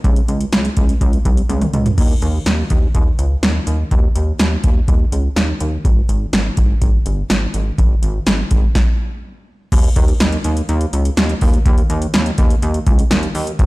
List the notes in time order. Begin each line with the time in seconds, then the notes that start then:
0.04 C#2, kick, closed hi-hat
0.16 closed hi-hat
0.28 C#2, closed hi-hat
0.41 closed hi-hat
0.52 C#2, snare, closed hi-hat
0.65 closed hi-hat
0.77 C#2, kick, closed hi-hat
0.89 closed hi-hat
1.01 C#2, kick, closed hi-hat
1.13 closed hi-hat
1.25 C2, kick, closed hi-hat
1.37 closed hi-hat
1.49 C#2, closed hi-hat, high tom
1.61 closed hi-hat, mid tom
1.73 C#2, closed hi-hat, mid tom
1.86 closed hi-hat, floor tom
1.98 D#2, kick, closed hi-hat, crash
2.22 D#2, closed hi-hat
2.46 D#2, snare, closed hi-hat
2.70 D#2, kick, closed hi-hat
2.95 D#2, kick, closed hi-hat
3.19 C#2, closed hi-hat
3.43 D#2, snare, closed hi-hat
3.67 D#2, closed hi-hat
3.91 D#2, kick, closed hi-hat
4.16 D#2, closed hi-hat
4.39 D#2, snare, closed hi-hat
4.64 D#2, kick, closed hi-hat
4.88 D#2, kick, closed hi-hat
5.12 C#2, closed hi-hat
5.36 D#2, snare, closed hi-hat
5.60 D#2, closed hi-hat
5.85 G#1, kick, closed hi-hat
6.09 G#1, closed hi-hat
6.33 G#1, snare, closed hi-hat
6.57 G#1, kick, closed hi-hat
6.82 G#1, kick, closed hi-hat
7.06 G1, closed hi-hat
7.30 G#1, snare, closed hi-hat
7.54 G#1, closed hi-hat
7.78 G#1, kick, closed hi-hat
8.03 G#1, closed hi-hat
8.27 G#1, snare, closed hi-hat
8.51 G#1, kick, closed hi-hat
8.75 kick, snare
9.72 D#2, kick, closed hi-hat, crash
9.84 closed hi-hat
9.96 D#2, kick, closed hi-hat
10.08 closed hi-hat
10.20 D#2, snare, closed hi-hat
10.32 closed hi-hat
10.44 D#2, closed hi-hat
10.57 closed hi-hat
10.69 D#2, closed hi-hat
10.81 closed hi-hat
10.93 C#2, closed hi-hat
11.05 closed hi-hat
11.17 D#2, snare, closed hi-hat
11.29 closed hi-hat
11.41 D#2, kick, open hi-hat
11.54 closed hi-hat
11.66 D#2, kick, closed hi-hat
11.78 closed hi-hat
11.90 D#2, closed hi-hat
12.02 closed hi-hat
12.14 D#2, snare, closed hi-hat
12.26 closed hi-hat
12.38 D#2, kick, closed hi-hat
12.50 closed hi-hat
12.62 D#2, closed hi-hat
12.74 closed hi-hat
12.87 C#2, kick, closed hi-hat
12.99 closed hi-hat
13.11 D#2, snare, closed hi-hat
13.23 closed hi-hat
13.35 D#2, open hi-hat
13.47 closed hi-hat
13.59 G#1, kick, closed hi-hat